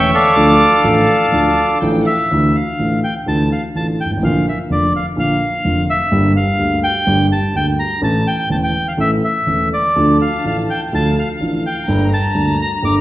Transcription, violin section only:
0.00 0.37 C#6 loud
0.37 0.85 D6 medium
0.85 1.81 A5 medium
1.82 2.06 G5 medium
2.07 2.31 F5 soft
9.95 10.88 A5 medium
10.93 11.88 F5 medium
11.88 13.01 A#5 medium

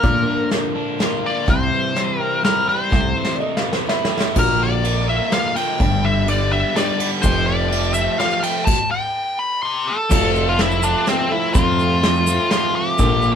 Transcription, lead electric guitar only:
0.00 0.49 A#4 medium
1.26 1.50 D5 loud
1.50 2.19 C5 loud
2.19 2.44 A#4 loud
2.45 2.68 A#4 medium
2.69 3.36 C5 medium
4.39 4.62 A#4 medium
4.63 5.06 D5 medium
5.09 5.33 E5 medium
5.33 5.57 F5 medium
5.56 6.05 G5 loud
6.05 6.29 E5 medium
6.30 6.52 D5 medium
6.53 6.76 E5 medium
6.77 7.09 D5 medium
7.22 7.47 C5 medium
7.46 7.94 D5 loud
7.94 8.19 E5 medium
8.19 8.44 F5 medium
8.43 8.65 G5 loud
8.65 8.91 A5 loud
8.91 9.40 G5 loud
9.39 9.62 B5 loud
9.63 9.88 G4 loud
9.63 9.96 C6 medium
9.87 10.49 A4 loud
10.49 10.60 F4 loud
10.60 10.84 E4 medium
10.84 11.08 D4 loud
11.09 11.32 C4 medium
11.32 11.53 E4 loud
11.54 12.50 F4 loud
12.52 12.75 F4 loud
12.76 13.31 G4 loud

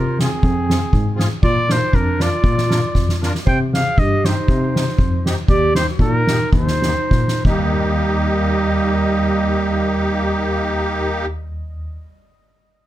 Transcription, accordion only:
0.19 0.30 C4 medium
0.19 0.30 F4 medium
0.19 0.30 G#4 medium
0.68 0.79 C4 medium
0.68 0.80 F4 soft
0.68 0.80 G#4 medium
1.15 1.28 C4 medium
1.15 1.28 F4 medium
1.15 1.28 G#4 medium
1.68 1.79 D4 medium
1.68 1.80 F4 medium
1.68 1.79 A#4 medium
2.18 2.29 D4 medium
2.18 2.30 F4 medium
2.18 2.30 A#4 medium
2.69 2.80 D4 medium
2.69 2.80 F4 soft
2.69 2.81 A#4 medium
3.21 3.32 D4 medium
3.21 3.33 F4 medium
3.21 3.33 A#4 medium
3.73 3.84 C4 soft
3.73 3.84 D#4 soft
3.73 3.84 G4 medium
4.25 4.35 C4 medium
4.25 4.35 D#4 medium
4.25 4.36 G4 medium
4.74 4.85 C4 medium
4.74 4.85 D#4 medium
4.74 4.85 G4 medium
5.25 5.35 C4 medium
5.25 5.36 D#4 medium
5.25 5.36 G4 medium
5.75 5.86 A#3 soft
5.75 5.85 D#4 medium
5.75 5.86 G4 medium
6.26 6.38 A#3 medium
6.26 6.39 D#4 medium
6.26 6.39 G4 medium
6.82 6.95 A#3 medium
6.82 6.95 D#4 medium
6.82 6.95 G4 medium
7.45 11.26 A#3 medium
7.45 11.26 D#4 medium
7.45 11.26 G4 loud

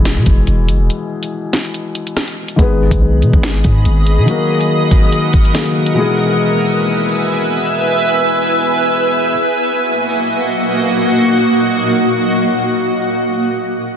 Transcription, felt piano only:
0.00 2.54 B2 medium
0.00 2.54 E3 medium
0.00 2.55 G#3 medium
0.00 2.56 E4 medium
0.00 2.56 G#4 medium
2.56 4.23 D#3 medium
2.56 4.24 G#3 medium
2.56 4.25 B3 medium
2.60 4.25 G#4 medium
2.60 4.26 B4 medium
4.25 5.51 D#3 medium
4.25 5.51 F#3 medium
4.25 5.52 A#3 medium
4.29 5.53 F#4 medium
4.29 5.54 A#4 medium
5.53 5.96 D#3 soft
5.53 5.97 F#3 soft
5.53 5.97 A#3 soft
5.53 5.97 F#4 soft
5.53 5.98 G#4 medium
5.94 9.30 B2 medium
5.94 9.30 E3 medium
5.94 9.31 G#3 medium
5.98 9.32 E4 medium
5.98 9.32 G#4 medium

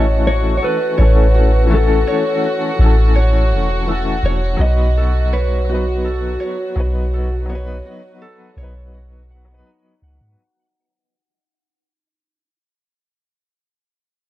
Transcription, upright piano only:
0.00 0.97 E3 medium
0.00 0.99 A3 medium
0.00 1.00 C#4 medium
0.00 1.02 A4 loud
0.97 1.65 E3 medium
0.97 1.67 A3 medium
0.97 1.67 C#4 medium
1.02 1.68 A4 medium
1.67 2.73 E3 medium
1.67 2.74 A3 medium
1.73 2.76 C#4 medium
1.73 2.78 A4 loud
2.76 3.82 E3 medium
2.76 3.83 A3 medium
2.82 3.85 C#4 medium
2.82 3.86 A4 medium
3.86 4.55 E3 medium
3.86 4.56 A3 medium
3.86 4.56 C#4 medium
3.91 4.57 A4 medium
4.57 5.62 F#3 medium
4.57 5.64 B3 medium
4.63 5.65 D#4 medium
4.63 5.67 B4 loud
5.64 6.71 F#3 medium
5.64 6.72 B3 medium
5.71 6.74 D#4 medium
5.71 6.75 B4 medium
6.76 7.44 F#3 medium
6.76 7.45 B3 medium
6.76 7.46 D#4 medium
6.80 7.46 B4 medium
7.46 8.52 F#3 medium
7.46 8.53 B3 medium
7.52 8.55 D#4 medium
7.52 8.56 B4 loud
8.54 9.43 F#3 medium
8.54 9.45 B3 medium
8.60 9.46 D#4 medium
8.60 9.48 B4 medium
9.45 10.32 F#3 medium
9.45 10.33 B3 medium
9.51 10.35 D#4 medium
9.51 10.36 B4 loud

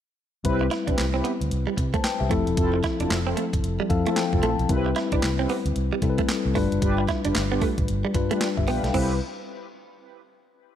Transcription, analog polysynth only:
0.45 0.66 C4 medium
0.45 0.66 E4 medium
0.45 0.66 G4 medium
0.45 0.66 B4 loud
0.87 1.05 C4 medium
0.87 1.05 E4 medium
0.87 1.05 G4 medium
0.87 1.05 B4 medium
1.14 1.32 C4 medium
1.14 1.32 E4 medium
1.14 1.32 G4 medium
1.14 1.32 B4 medium
2.57 2.78 C4 loud
2.57 2.78 E4 medium
2.57 2.78 F4 medium
2.57 2.78 A4 loud
3.00 3.17 C4 medium
3.00 3.18 E4 medium
3.00 3.18 F4 medium
3.00 3.18 A4 medium
3.26 3.44 C4 medium
3.26 3.44 E4 medium
3.26 3.44 F4 medium
3.26 3.44 A4 medium
4.06 4.23 C4 medium
4.06 4.23 E4 medium
4.06 4.24 F4 medium
4.06 4.24 A4 medium
4.32 4.50 C4 medium
4.32 4.50 E4 medium
4.32 4.50 F4 medium
4.32 4.50 A4 medium
4.69 4.90 C4 medium
4.69 4.90 E4 medium
4.69 4.91 G4 medium
4.69 4.91 B4 loud
5.12 5.30 C4 medium
5.12 5.30 E4 medium
5.12 5.30 G4 medium
5.12 5.30 B4 medium
5.38 5.56 C4 medium
5.38 5.56 E4 medium
5.38 5.56 G4 medium
5.38 5.57 B4 medium
6.82 7.03 D4 loud
6.82 7.03 F4 medium
6.82 7.03 G4 medium
6.82 7.03 B4 loud
7.24 7.42 D4 medium
7.24 7.42 F4 medium
7.24 7.42 G4 medium
7.24 7.42 B4 medium
7.50 7.68 D4 medium
7.50 7.68 F4 medium
7.50 7.69 G4 medium
7.50 7.69 B4 medium
8.30 8.48 D4 medium
8.30 8.48 F4 medium
8.30 8.48 G4 medium
8.30 8.48 B4 medium
8.67 8.88 D4 medium
8.67 8.88 F4 medium
8.67 8.88 G4 medium
8.67 8.88 B4 medium
8.93 9.14 C4 medium
8.93 9.15 E4 medium
8.93 9.15 G4 medium
8.93 9.15 B4 loud

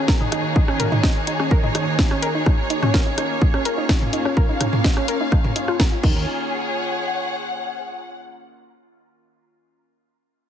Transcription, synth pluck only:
0.08 0.16 A#4 loud
0.21 0.31 D#4 medium
0.32 0.44 D#4 medium
0.56 0.68 D#4 medium
0.68 0.79 C#4 loud
0.80 0.88 A#4 loud
0.92 1.02 D#4 medium
1.03 1.15 D#4 medium
1.27 1.39 D#4 medium
1.40 1.51 C#4 medium
1.51 1.59 A#4 loud
1.64 1.74 D#4 medium
1.75 1.87 D#4 medium
1.99 2.10 D#4 medium
2.11 2.22 C#4 loud
2.22 2.31 A#4 loud
2.35 2.45 D#4 medium
2.46 2.58 D#4 medium
2.70 2.82 D#4 medium
2.82 2.93 C#4 loud
2.94 3.02 A#4 loud
3.06 3.17 D#4 medium
3.18 3.29 D#4 medium
3.42 3.53 D#4 medium
3.54 3.65 C#4 loud
3.65 3.74 A#4 loud
3.78 3.88 D#4 medium
3.89 4.01 D#4 medium
4.13 4.25 D#4 medium
4.25 4.36 C#4 loud
4.37 4.45 A#4 loud
4.49 4.59 D#4 medium
4.61 4.72 D#4 medium
4.84 4.96 D#4 medium
4.97 5.08 C#4 loud
5.08 5.16 A#4 loud
5.21 5.31 D#4 medium
5.32 5.44 D#4 medium
5.56 5.61 D#4 medium
5.68 5.76 F4 loud
5.80 5.85 A#4 loud
5.92 6.03 F4 medium
6.03 6.26 D#4 medium

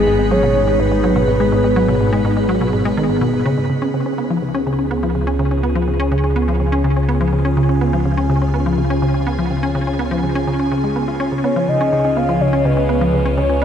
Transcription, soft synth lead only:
0.00 0.33 G#4 loud
0.31 0.73 C#5 loud
0.73 0.81 C#5 medium
0.80 3.22 B4 loud
11.44 11.70 C#5 loud
11.68 12.18 D#5 loud
12.17 12.42 F5 loud
12.41 12.66 C#5 loud
12.65 13.37 B4 loud
13.38 13.63 C#5 loud

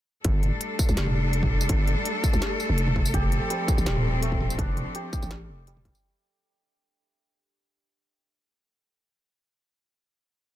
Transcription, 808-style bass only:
0.25 0.51 G1 medium
0.89 0.96 C2 medium
0.97 1.68 F1 loud
1.70 1.96 G1 loud
2.33 2.41 C2 medium
2.69 3.13 F1 loud
3.14 3.40 F1 loud
3.78 3.86 A1 medium
3.86 4.57 D#1 medium
4.59 4.85 F1 loud
5.23 5.50 A1 medium
5.49 5.93 F1 loud

